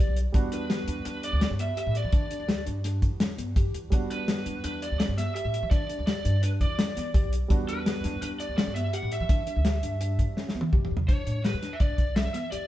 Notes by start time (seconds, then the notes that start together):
Already playing: G3 B3 D4 F#4 D5
0.00 G4
0.07 B1
0.16 closed hi-hat
0.32 E2 G3 B3 D4 F#4, kick, closed hi-hat
0.52 D4 B4, closed hi-hat
0.70 G4, snare, closed hi-hat
0.88 E2 D4, closed hi-hat
1.05 E2 D4 B4, closed hi-hat
1.23 D5, closed hi-hat
1.33 D2
1.41 C#4 D5, snare, closed hi-hat
1.51 G2
1.59 B3 E5, closed hi-hat
1.77 G4 E5, closed hi-hat
1.87 A2
1.95 D5, closed hi-hat
2.04 E3
2.12 E3 D4, kick, closed hi-hat
2.31 D4, closed hi-hat
2.40 D2
2.48 G4, snare, closed hi-hat
2.66 G2 D4, closed hi-hat
2.84 D4, snare, closed hi-hat
3.02 E2, kick, closed hi-hat
3.20 C#4, snare, closed hi-hat
3.38 G2 B3, closed hi-hat
3.56 F#2 G4, kick, closed hi-hat
3.74 E2, closed hi-hat
3.90 E2 G3 B3 D4 F#4, kick, closed hi-hat
4.10 D4 B4, closed hi-hat
4.28 G4, snare, closed hi-hat
4.46 E2 D4, closed hi-hat
4.64 E2 D4 B4, closed hi-hat
4.82 D5, closed hi-hat
4.91 D2
4.99 C#4 D5, snare, closed hi-hat
5.09 G2
5.17 B3 E5, snare, closed hi-hat
5.35 G4 E5, closed hi-hat
5.45 A2
5.54 closed hi-hat
5.63 E3
5.71 E3 D4 D5, kick, closed hi-hat
5.89 D4, closed hi-hat
5.99 D2
6.07 G4 D5, snare, closed hi-hat
6.25 G2 D4, closed hi-hat
6.43 D4 B4, closed hi-hat
6.61 E2 D5, kick, closed hi-hat
6.79 C#4, snare, closed hi-hat
6.97 E3 B3, snare, closed hi-hat
7.14 E2 G4, kick, closed hi-hat
7.24 B1
7.33 closed hi-hat
7.48 E2 G3 B3 D4 F#4, kick, closed hi-hat
7.68 D4 B4, closed hi-hat
7.86 G4, snare, closed hi-hat
8.04 E2 D4, snare, closed hi-hat
8.22 E2 D4 B4, closed hi-hat
8.40 D5, closed hi-hat
8.49 D2
8.58 C#4 D5, snare, closed hi-hat
8.67 G2
8.75 B3 E5, closed hi-hat
8.93 G4 F#5, closed hi-hat
9.03 A2
9.12 E5, closed hi-hat
9.20 E3
9.29 E3 D4, kick, closed hi-hat
9.47 D4, closed hi-hat
9.56 D2
9.65 G4, snare, closed hi-hat
9.83 G2 D4, closed hi-hat
10.01 D4, closed hi-hat
10.19 E2, kick, closed hi-hat
10.37 C#4, snare
10.49 snare
10.55 E3 B3
10.61 high tom
10.73 F#2 G4, kick, mid tom
10.85 mid tom
10.91 E2
10.97 floor tom
11.08 E2 D4 C#5, kick, closed hi-hat
11.27 A2 D4, closed hi-hat
11.44 G4 B4, snare, closed hi-hat
11.54 E2
11.62 D4, snare, closed hi-hat
11.73 E5
11.80 D4 D5, kick, closed hi-hat
11.90 B1
11.98 kick, closed hi-hat
12.16 C#4 E5, snare, closed hi-hat
12.25 E3
12.34 B3 E5, snare, closed hi-hat
12.51 E2 G4 D5, closed hi-hat